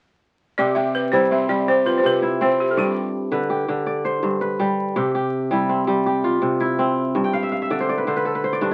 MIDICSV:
0, 0, Header, 1, 3, 480
1, 0, Start_track
1, 0, Key_signature, 0, "major"
1, 0, Tempo, 365408
1, 755, Time_signature, 12, 3, 24, 8
1, 11480, End_track
2, 0, Start_track
2, 0, Title_t, "Balafon"
2, 0, Program_c, 0, 12
2, 759, Note_on_c, 0, 74, 84
2, 985, Note_on_c, 0, 76, 78
2, 1005, Note_off_c, 0, 74, 0
2, 1238, Note_off_c, 0, 76, 0
2, 1246, Note_on_c, 0, 71, 79
2, 1468, Note_on_c, 0, 72, 83
2, 1487, Note_off_c, 0, 71, 0
2, 1694, Note_off_c, 0, 72, 0
2, 1734, Note_on_c, 0, 76, 82
2, 1960, Note_on_c, 0, 74, 77
2, 1972, Note_off_c, 0, 76, 0
2, 2181, Note_off_c, 0, 74, 0
2, 2210, Note_on_c, 0, 72, 81
2, 2426, Note_off_c, 0, 72, 0
2, 2448, Note_on_c, 0, 71, 73
2, 2580, Note_off_c, 0, 71, 0
2, 2595, Note_on_c, 0, 72, 60
2, 2681, Note_off_c, 0, 72, 0
2, 2709, Note_on_c, 0, 71, 80
2, 3180, Note_on_c, 0, 72, 81
2, 3186, Note_off_c, 0, 71, 0
2, 3414, Note_off_c, 0, 72, 0
2, 3419, Note_on_c, 0, 67, 67
2, 3556, Note_on_c, 0, 69, 51
2, 3559, Note_off_c, 0, 67, 0
2, 3642, Note_off_c, 0, 69, 0
2, 3659, Note_on_c, 0, 67, 67
2, 4150, Note_off_c, 0, 67, 0
2, 11480, End_track
3, 0, Start_track
3, 0, Title_t, "Kora"
3, 0, Program_c, 1, 46
3, 770, Note_on_c, 1, 48, 75
3, 775, Note_on_c, 1, 67, 57
3, 996, Note_off_c, 1, 67, 0
3, 1001, Note_on_c, 1, 67, 53
3, 1485, Note_on_c, 1, 55, 67
3, 1485, Note_on_c, 1, 64, 59
3, 1721, Note_on_c, 1, 60, 57
3, 1940, Note_off_c, 1, 55, 0
3, 1955, Note_on_c, 1, 55, 66
3, 2200, Note_off_c, 1, 67, 0
3, 2205, Note_on_c, 1, 67, 56
3, 2437, Note_on_c, 1, 65, 57
3, 2516, Note_off_c, 1, 64, 0
3, 2662, Note_off_c, 1, 48, 0
3, 2677, Note_on_c, 1, 48, 66
3, 2918, Note_on_c, 1, 64, 63
3, 3160, Note_off_c, 1, 60, 0
3, 3165, Note_on_c, 1, 60, 67
3, 3642, Note_on_c, 1, 43, 72
3, 3642, Note_on_c, 1, 74, 63
3, 3701, Note_off_c, 1, 48, 0
3, 3701, Note_off_c, 1, 55, 0
3, 4060, Note_off_c, 1, 67, 0
3, 4356, Note_on_c, 1, 50, 68
3, 4359, Note_on_c, 1, 71, 56
3, 4425, Note_off_c, 1, 65, 0
3, 4438, Note_off_c, 1, 60, 0
3, 4595, Note_on_c, 1, 67, 57
3, 4824, Note_off_c, 1, 50, 0
3, 4839, Note_on_c, 1, 50, 66
3, 4976, Note_off_c, 1, 64, 0
3, 5070, Note_off_c, 1, 74, 0
3, 5076, Note_on_c, 1, 74, 55
3, 5317, Note_on_c, 1, 72, 60
3, 5396, Note_off_c, 1, 71, 0
3, 5538, Note_off_c, 1, 43, 0
3, 5554, Note_on_c, 1, 43, 67
3, 5794, Note_on_c, 1, 71, 63
3, 6036, Note_on_c, 1, 55, 72
3, 6450, Note_off_c, 1, 67, 0
3, 6515, Note_on_c, 1, 67, 60
3, 6516, Note_on_c, 1, 48, 69
3, 6531, Note_off_c, 1, 74, 0
3, 6581, Note_off_c, 1, 43, 0
3, 6581, Note_off_c, 1, 50, 0
3, 6581, Note_off_c, 1, 55, 0
3, 6595, Note_off_c, 1, 71, 0
3, 6757, Note_off_c, 1, 67, 0
3, 6762, Note_on_c, 1, 67, 58
3, 6877, Note_off_c, 1, 72, 0
3, 7236, Note_on_c, 1, 55, 69
3, 7240, Note_on_c, 1, 64, 58
3, 7478, Note_on_c, 1, 60, 58
3, 7700, Note_off_c, 1, 55, 0
3, 7715, Note_on_c, 1, 55, 71
3, 7958, Note_off_c, 1, 67, 0
3, 7963, Note_on_c, 1, 67, 58
3, 8197, Note_on_c, 1, 65, 63
3, 8276, Note_off_c, 1, 64, 0
3, 8414, Note_off_c, 1, 48, 0
3, 8430, Note_on_c, 1, 48, 66
3, 8674, Note_on_c, 1, 64, 65
3, 8911, Note_off_c, 1, 60, 0
3, 8916, Note_on_c, 1, 60, 68
3, 9391, Note_on_c, 1, 43, 72
3, 9461, Note_off_c, 1, 48, 0
3, 9461, Note_off_c, 1, 55, 0
3, 9512, Note_on_c, 1, 79, 64
3, 9634, Note_on_c, 1, 77, 64
3, 9712, Note_off_c, 1, 64, 0
3, 9754, Note_on_c, 1, 76, 59
3, 9819, Note_off_c, 1, 67, 0
3, 9833, Note_off_c, 1, 65, 0
3, 9869, Note_off_c, 1, 77, 0
3, 9874, Note_on_c, 1, 77, 61
3, 10002, Note_off_c, 1, 76, 0
3, 10007, Note_on_c, 1, 76, 59
3, 10120, Note_on_c, 1, 50, 64
3, 10124, Note_on_c, 1, 74, 58
3, 10250, Note_on_c, 1, 72, 57
3, 10361, Note_off_c, 1, 74, 0
3, 10366, Note_on_c, 1, 74, 62
3, 10479, Note_on_c, 1, 71, 58
3, 10558, Note_off_c, 1, 60, 0
3, 10558, Note_off_c, 1, 72, 0
3, 10584, Note_off_c, 1, 50, 0
3, 10600, Note_on_c, 1, 50, 63
3, 10605, Note_on_c, 1, 72, 60
3, 10721, Note_off_c, 1, 71, 0
3, 10726, Note_on_c, 1, 71, 60
3, 10736, Note_off_c, 1, 79, 0
3, 10839, Note_on_c, 1, 69, 56
3, 10962, Note_off_c, 1, 71, 0
3, 10967, Note_on_c, 1, 71, 63
3, 11046, Note_off_c, 1, 72, 0
3, 11085, Note_on_c, 1, 72, 62
3, 11186, Note_off_c, 1, 77, 0
3, 11196, Note_off_c, 1, 74, 0
3, 11202, Note_on_c, 1, 74, 60
3, 11299, Note_off_c, 1, 43, 0
3, 11314, Note_on_c, 1, 43, 66
3, 11315, Note_on_c, 1, 62, 61
3, 11365, Note_off_c, 1, 76, 0
3, 11480, Note_off_c, 1, 43, 0
3, 11480, Note_off_c, 1, 50, 0
3, 11480, Note_off_c, 1, 62, 0
3, 11480, Note_off_c, 1, 69, 0
3, 11480, Note_off_c, 1, 71, 0
3, 11480, Note_off_c, 1, 72, 0
3, 11480, Note_off_c, 1, 74, 0
3, 11480, End_track
0, 0, End_of_file